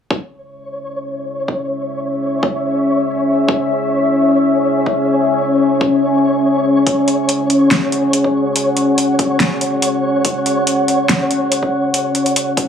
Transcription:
0.11 ambient pad C#4 G#4 E5, synth texture C#5, kick
1.48 kick
2.43 kick
3.48 kick
4.86 kick
5.81 kick
6.87 ambient pad F#5, kick, closed hi-hat
7.08 closed hi-hat
7.29 closed hi-hat
7.50 closed hi-hat
7.71 snare, closed hi-hat
7.92 closed hi-hat
8.13 closed hi-hat
8.24 kick
8.56 closed hi-hat
8.77 closed hi-hat
8.98 closed hi-hat
9.19 kick, closed hi-hat
9.40 snare, closed hi-hat
9.61 closed hi-hat
9.82 closed hi-hat
10.25 kick, closed hi-hat
10.46 closed hi-hat
10.67 closed hi-hat
10.88 closed hi-hat
11.09 snare, closed hi-hat
11.31 closed hi-hat
11.52 closed hi-hat
11.63 kick
11.94 closed hi-hat
12.15 closed hi-hat
12.26 closed hi-hat
12.36 closed hi-hat
12.57 kick, closed hi-hat

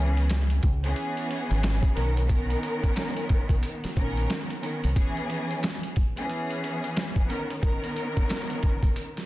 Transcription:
Already playing: fingered electric bass C#2, string section E3 B3 C#4 G#4
0.17 closed hi-hat
0.30 snare, closed hi-hat
0.50 closed hi-hat
0.63 fingered electric bass C#2, kick, closed hi-hat
0.84 string section E3 B3 C#4 G#4, closed hi-hat
0.96 closed hi-hat
1.17 closed hi-hat
1.31 closed hi-hat
1.51 fingered electric bass G#1, closed hi-hat
1.63 snare, closed hi-hat
1.83 kick, closed hi-hat
1.95 fingered electric bass B1, string section D#3 B3 C#4 A#4, closed hi-hat
2.17 closed hi-hat
2.27 string section D#3 B3 C#4 A#4, kick, closed hi-hat
2.50 closed hi-hat
2.63 closed hi-hat
2.84 kick, closed hi-hat
2.96 snare, closed hi-hat
3.17 closed hi-hat
3.29 kick, closed hi-hat
3.49 fingered electric bass B1, kick, closed hi-hat
3.63 closed hi-hat
3.84 muted fingered electric bass stroke, snare, closed hi-hat
3.97 fingered electric bass A#1, string section D#3 B3 C#4 A#4, kick, closed hi-hat
4.17 closed hi-hat
4.30 snare, closed hi-hat
4.50 closed hi-hat
4.62 string section D#3 B3 C#4 A#4, closed hi-hat
4.84 fingered electric bass C2, closed hi-hat
4.96 string section E3 B3 C#4 G#4, kick, closed hi-hat
5.17 closed hi-hat
5.30 closed hi-hat
5.51 closed hi-hat
5.63 snare, closed hi-hat
5.83 closed hi-hat
5.96 kick, closed hi-hat
6.17 string section E3 B3 C#4 G#4, closed hi-hat
6.30 closed hi-hat
6.50 closed hi-hat
6.64 closed hi-hat
6.84 closed hi-hat
6.97 snare, closed hi-hat
7.16 kick, closed hi-hat
7.28 string section D#3 B3 C#4 A#4, closed hi-hat
7.50 closed hi-hat
7.60 string section D#3 B3 C#4 A#4, kick, closed hi-hat
7.84 closed hi-hat
7.96 closed hi-hat
8.17 kick, closed hi-hat
8.29 snare, closed hi-hat
8.50 closed hi-hat
8.63 kick, closed hi-hat
8.83 kick, closed hi-hat
8.96 closed hi-hat
9.17 snare, closed hi-hat

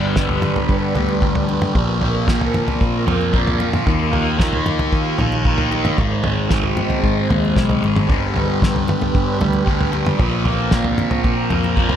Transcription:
Already playing: picked electric bass G1, distorted electric guitar G2 D3 G3, string machine B3 D4 G4 B4
0.16 distorted electric guitar G2 D3 G3, kick, snare
0.29 floor tom
0.42 mid tom, low conga
0.56 floor tom, high conga
0.69 picked electric bass G2, kick
0.95 picked electric bass D2, distorted electric guitar D3 G3, floor tom, high conga
1.09 low conga
1.21 distorted electric guitar G2 D3 G3, kick
1.35 floor tom
1.47 distorted electric guitar D3 G3, low conga
1.62 mid tom, high conga
1.74 picked electric bass A#1, distorted electric guitar A#2 F3 A#3, string machine A#3 C4 F4 A#4, kick, floor tom
2.01 distorted electric guitar F3 A#3, floor tom
2.27 distorted electric guitar A#2 F3 A#3, kick, snare
2.41 floor tom
2.54 mid tom, low conga
2.68 floor tom, high conga
2.81 picked electric bass A#2, kick
3.07 picked electric bass F2, distorted electric guitar F3 A#3, floor tom, high conga
3.21 low conga
3.33 distorted electric guitar A#2 F3 A#3, kick
3.47 floor tom
3.59 distorted electric guitar F3 A#3, low conga
3.73 mid tom, high conga
3.86 picked electric bass D#2, distorted electric guitar D#3 A#3 D#4, string machine D#4, kick, floor tom
4.13 distorted electric guitar A#3 D#4, floor tom
4.38 distorted electric guitar D#3 A#3 D#4, kick, snare
4.53 floor tom
4.66 mid tom, low conga
4.79 floor tom, high conga
4.93 picked electric bass D#3, kick
5.18 picked electric bass A#1, distorted electric guitar A#3 D#4, floor tom, high conga
5.32 low conga
5.44 distorted electric guitar D#3 A#3 D#4, kick
5.58 floor tom
5.71 distorted electric guitar A#3 D#4, low conga
5.85 mid tom, high conga
5.97 picked electric bass G#1, distorted electric guitar G#2 D#3, string machine C4 G#4 C5, kick, floor tom
6.01 distorted electric guitar G#3
6.23 distorted electric guitar D#3 G#3, floor tom, mid tom
6.50 distorted electric guitar G#2 D#3 G#3, kick, snare
6.63 floor tom
6.77 mid tom, high conga, low conga
6.90 floor tom, high conga
7.04 picked electric bass G#2, kick
7.29 picked electric bass D#2, distorted electric guitar D#3 G#3, floor tom, high conga
7.45 low conga
7.56 picked electric bass B1, distorted electric guitar G#2 D#3 G#3, kick, snare
7.70 floor tom, high conga
7.81 picked electric bass G#1, distorted electric guitar D#3 G#3, low conga
7.96 mid tom, high conga
8.07 picked electric bass G1, distorted electric guitar G2 D3 G3, string machine B3 D4 G4 B4, kick, floor tom
8.34 distorted electric guitar D3 G3, floor tom
8.61 distorted electric guitar G2 D3 G3, kick, snare
8.76 floor tom
8.88 mid tom, low conga
9.01 floor tom, high conga
9.15 picked electric bass G2, kick
9.39 picked electric bass D2, distorted electric guitar D3 G3, floor tom, high conga
9.53 low conga
9.66 distorted electric guitar G2 D3 G3, kick
9.81 floor tom
9.92 distorted electric guitar D3 G3, low conga
10.06 mid tom, high conga
10.19 picked electric bass A#1, distorted electric guitar A#2 F3 A#3, string machine A#3 C4 F4 A#4, kick, floor tom
10.45 distorted electric guitar F3 A#3, floor tom
10.71 distorted electric guitar A#2 F3 A#3, kick, snare
10.84 floor tom
10.98 mid tom, low conga
11.11 floor tom, high conga
11.24 picked electric bass A#2, kick
11.50 picked electric bass F2, distorted electric guitar F3 A#3, floor tom, high conga
11.64 low conga
11.76 distorted electric guitar A#2 F3 A#3, kick
11.89 floor tom

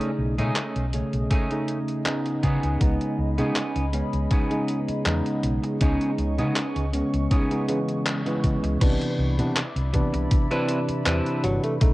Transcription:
Already playing: tine electric piano C#3 A3 D#4 G#4, ambient pad C#4 G#4 D#5
0.01 closed hi-hat
0.19 fingered electric bass B1
0.38 fingered electric bass B2, tine electric piano C#3 G#3 A3 D#4, clean electric guitar A3 C#4 D#4 G#4, closed hi-hat
0.56 clap, closed hi-hat
0.76 fingered electric bass B1, closed hi-hat
0.93 tine electric piano C#3 A3 C#4 G#4, closed hi-hat
1.13 fingered electric bass B1, closed hi-hat
1.31 clean electric guitar A3 C#4 D#4 G#4, kick, closed hi-hat
1.50 tine electric piano C#3 A3 D#4 G#4, closed hi-hat
1.68 closed hi-hat
1.88 closed hi-hat
2.05 tine electric piano C#3 B3 D#4 G#4, clap, closed hi-hat
2.26 muted clean electric guitar stroke, closed hi-hat
2.43 fingered electric bass C#3, clean electric guitar B3 C#4 D#4 G#4, ambient pad B5, kick, closed hi-hat
2.63 fingered electric bass C#2, closed hi-hat
2.80 fingered electric bass C#2, tine electric piano C#3 G#3 B3 D#4, kick, closed hi-hat
3.01 closed hi-hat
3.18 fingered electric bass C#2
3.38 tine electric piano C#3 G#3 B3 D#4, fingered electric bass C#3, clean electric guitar B3 C#4 D#4 G#4, closed hi-hat
3.56 clap, closed hi-hat
3.76 fingered electric bass C#2, closed hi-hat
3.93 tine electric piano C#3 G#3 B3 C#4, closed hi-hat
4.13 fingered electric bass C#2, closed hi-hat
4.31 clean electric guitar B3 C#4 D#4 G#4, kick, closed hi-hat
4.50 tine electric piano C#3 G#3 B3 D#4, closed hi-hat
4.68 closed hi-hat
4.88 muted fingered electric bass stroke, closed hi-hat
5.05 fingered electric bass E2, tine electric piano C#3 G#3 B3 D#4, clap, closed hi-hat
5.26 muted clean electric guitar stroke, closed hi-hat
5.43 fingered electric bass B1, ambient pad C#6, closed hi-hat
5.63 muted clean electric guitar stroke, closed hi-hat
5.81 fingered electric bass C#2, tine electric piano C#3 G#3 B3 D#4, clean electric guitar B3 C#4 D#4 G#4, kick, closed hi-hat
6.01 closed hi-hat
6.18 fingered electric bass C#2, closed hi-hat
6.38 tine electric piano C#3 G#3 B3 D#4, fingered electric bass C#3, clean electric guitar B3 C#4 D#4 G#4, closed hi-hat
6.56 clap, closed hi-hat
6.76 fingered electric bass C#2, closed hi-hat
6.93 tine electric piano C#3 G#3 B3 C#4, closed hi-hat
7.14 fingered electric bass C#2, closed hi-hat
7.31 clean electric guitar B3 C#4 D#4 G#4, kick, closed hi-hat
7.51 tine electric piano C#3 G#3 B3 D#4, closed hi-hat
7.68 tine electric piano C#3 E3 G#3 B3, closed hi-hat
7.88 closed hi-hat
8.06 clap, closed hi-hat
8.26 tine electric piano C#3 E3 G#3 B3, muted clean electric guitar stroke, closed hi-hat
8.44 fingered electric bass C#3, kick, closed hi-hat
8.63 fingered electric bass C#2, muted clean electric guitar stroke, closed hi-hat
8.81 fingered electric bass C2, tine electric piano C3 E3 B3 D4, ambient pad E4 D5 B5, muted clean electric guitar stroke, kick, closed hi-hat, crash
9.01 muted clean electric guitar stroke, closed hi-hat
9.18 fingered electric bass C2
9.38 fingered electric bass C3, tine electric piano C3 E3 B3 D4, closed hi-hat
9.56 clap, closed hi-hat
9.76 fingered electric bass C2, closed hi-hat
9.93 tine electric piano C3 E3 B3 D4, muted clean electric guitar stroke, kick, closed hi-hat
10.14 fingered electric bass C2, muted clean electric guitar stroke, closed hi-hat
10.31 muted clean electric guitar stroke, kick, closed hi-hat
10.50 tine electric piano C3 E3 D4 B4, clean electric guitar C4 D4 E4 B4, closed hi-hat
10.69 closed hi-hat
10.89 muted fingered electric bass stroke, closed hi-hat
11.05 fingered electric bass E2, tine electric piano C3 E3 D4 B4, clean electric guitar C4 D4 E4 B4, clap, closed hi-hat
11.26 closed hi-hat
11.44 fingered electric bass G1, tenor saxophone F#3, closed hi-hat
11.64 tenor saxophone A3, closed hi-hat
11.81 fingered electric bass B1, tine electric piano C#3 A3 D#4, tenor saxophone A3, ambient pad C#4 D#5, muted clean electric guitar stroke, kick, closed hi-hat

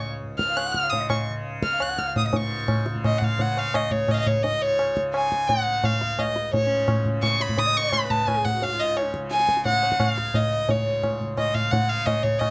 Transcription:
Already playing: tanpura C#2 G#2 C#3, sarangi C#5
0.22 tanpura G#2
0.38 violin F6, tabla ke
0.49 sarangi F5
0.57 violin F#6, tabla na
0.67 sarangi F#5
0.72 tanpura C#3, violin F6, tabla ke
0.83 sarangi F5
0.90 violin D#6, tabla tin, tabla ge
1.00 sarangi D#5
1.10 violin C#6, tabla na, tabla ge
1.29 tanpura C#3
1.63 violin F6, tabla ke
1.73 sarangi F5
1.80 tanpura C#2, violin F#6, tabla na
1.89 sarangi F#5
1.99 violin F6, tabla ke
2.07 sarangi F5
2.16 violin D#6, tabla tin, tabla ge
2.25 sarangi D#5, violin D#6
2.32 tanpura G#2, violin C#6, tabla tin, tabla ge
2.68 tabla na, tabla ge
2.86 tanpura C#3, tabla te
2.95 tabla ge
3.04 violin D#5, tabla na, tabla ge
3.18 violin F#5, tabla ge
3.24 violin F5
3.37 tanpura C#3, tabla tin, tabla ge
3.41 violin F#5
3.57 violin F5, tabla na
3.74 violin D#5, tabla na, tabla ge
3.91 tanpura C#2, violin C#5, tabla ge
4.08 violin D#5, tabla na, tabla ge
4.13 violin F5
4.20 violin D#5
4.27 violin C#5, tabla ge
4.43 tanpura G#2, violin D#5, tabla tin
4.62 violin C#5
4.79 tabla na
4.97 tanpura C#3, tabla ke
5.14 violin G#5, tabla na
5.32 tabla ke
5.48 tanpura C#3, violin F#5, tabla tin, tabla ge
5.84 violin F5, tabla na, tabla ge
6.01 tanpura C#2, tabla te
6.19 violin D#5, tabla na, tabla ge
6.36 tabla te
6.54 tanpura G#2, violin C#5, tabla tin, tabla ge
6.63 sarangi C#4
6.88 tabla na, tabla ge
7.05 tanpura C#3, tabla ge
7.23 violin C#6, tabla na, tabla ge
7.32 sarangi C#5
7.40 violin B5, tabla te
7.49 tabla ge
7.58 tanpura C#3, violin D#6, tabla tin, tabla ge
7.67 sarangi D#5
7.77 violin C#6
7.85 sarangi C#5
7.92 violin B5, tabla na, tabla ge
8.04 sarangi B4
8.10 tanpura C#2, violin A5, tabla ge
8.28 violin G#5, tabla na, tabla ge
8.38 sarangi G#4
8.45 violin F#5, tabla ge
8.55 sarangi F#4
8.62 tanpura G#2, violin F5, tabla tin
8.72 sarangi F4
8.80 violin D#5
8.97 violin C#5, tabla na
9.05 sarangi C#4
9.14 tanpura C#3, tabla ke
9.30 violin G#5, tabla te
9.40 tabla te
9.49 tabla ke
9.57 tabla te
9.65 tanpura C#3, violin F#5, tabla tin, tabla ge
9.83 tabla na
9.92 tabla ke
10.00 violin F5, tabla na, tabla ge
10.17 tanpura C#2, tabla te
10.34 violin D#5, tabla tin, tabla ge
10.69 tanpura G#2, violin C#5, tabla tin, tabla ge
11.03 tabla na, tabla ge
11.20 tanpura C#3, tabla ge
11.37 violin D#5, tabla na, tabla ge
11.54 violin F5, tabla ge
11.71 tanpura C#3, violin F#5, tabla tin, tabla ge
11.89 violin F5
12.06 violin D#5, tabla na, tabla ge
12.23 tanpura C#2, violin C#5, tabla ge
12.39 violin D#5, tabla na, tabla ge

